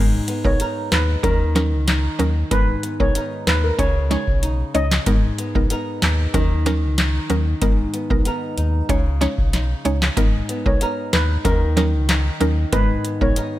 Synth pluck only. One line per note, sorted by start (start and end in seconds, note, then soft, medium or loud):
0.00 0.16 G#3 medium
0.00 0.16 B3 medium
0.00 0.16 D#4 medium
0.00 0.17 A#4 loud
0.45 0.64 G#3 medium
0.45 0.64 B3 medium
0.45 0.64 D#4 medium
0.45 0.64 A#4 medium
1.23 1.53 F#3 medium
1.23 1.53 C#4 medium
1.23 1.53 D#4 medium
1.23 1.53 A#4 loud
1.55 1.76 F#3 medium
1.55 1.76 C#4 medium
1.55 1.76 D#4 medium
1.55 1.76 A#4 medium
2.19 2.40 F#3 medium
2.19 2.40 C#4 medium
2.19 2.40 D#4 medium
2.19 2.40 A#4 medium
2.51 2.72 G#3 loud
2.51 2.72 B3 medium
2.51 2.72 D#4 medium
2.51 2.72 A#4 loud
3.00 3.19 G#3 medium
3.00 3.19 B3 medium
3.00 3.19 D#4 medium
3.00 3.19 A#4 medium
3.79 4.08 G#3 medium
3.79 4.08 C#4 medium
3.79 4.08 D#4 medium
3.79 4.09 C#5 loud
4.11 4.31 G#3 medium
4.11 4.31 C#4 medium
4.11 4.31 D#4 medium
4.11 4.31 C#5 medium
4.74 4.95 G#3 medium
4.74 4.95 C#4 medium
4.74 4.95 D#4 medium
4.74 4.95 C#5 medium
5.06 5.27 G#3 medium
5.06 5.27 B3 medium
5.06 5.27 D#4 medium
5.06 5.27 A#4 loud
5.55 5.74 G#3 medium
5.55 5.74 B3 medium
5.55 5.74 D#4 medium
5.55 5.75 A#4 medium
6.34 6.64 F#3 medium
6.34 6.64 C#4 medium
6.34 6.64 D#4 medium
6.34 6.64 A#4 loud
6.66 6.86 F#3 medium
6.66 6.87 C#4 medium
6.66 6.87 D#4 medium
6.66 6.87 A#4 medium
7.30 7.50 F#3 medium
7.30 7.50 C#4 medium
7.30 7.50 D#4 medium
7.30 7.51 A#4 medium
7.62 7.82 G#3 medium
7.62 7.82 B3 medium
7.62 7.82 D#4 medium
7.62 7.82 A#4 loud
8.10 8.29 G#3 medium
8.10 8.30 B3 medium
8.10 8.30 D#4 medium
8.10 8.30 A#4 medium
8.89 9.19 G#3 medium
8.89 9.19 C#4 medium
8.89 9.19 D#4 medium
8.89 9.19 C#5 loud
9.21 9.42 G#3 medium
9.21 9.42 C#4 medium
9.21 9.42 D#4 medium
9.21 9.42 C#5 medium
9.85 10.06 G#3 medium
9.85 10.06 C#4 medium
9.85 10.06 D#4 medium
9.85 10.06 C#5 medium
10.17 10.37 G#3 medium
10.17 10.38 B3 medium
10.17 10.38 D#4 medium
10.17 10.38 A#4 loud
10.66 10.85 G#3 medium
10.66 10.85 B3 medium
10.66 10.85 D#4 medium
10.66 10.85 A#4 medium
11.45 11.74 F#3 loud
11.45 11.74 C#4 medium
11.45 11.75 D#4 medium
11.45 11.75 A#4 loud
11.77 11.97 F#3 medium
11.77 11.97 C#4 medium
11.77 11.97 D#4 medium
11.77 11.97 A#4 medium
12.40 12.61 F#3 medium
12.40 12.61 C#4 medium
12.40 12.61 D#4 medium
12.40 12.61 A#4 medium
12.72 12.93 G#3 loud
12.72 12.93 B3 medium
12.72 12.93 D#4 medium
12.72 12.93 A#4 loud
13.21 13.40 G#3 medium
13.21 13.40 B3 medium
13.21 13.40 D#4 medium
13.21 13.41 A#4 medium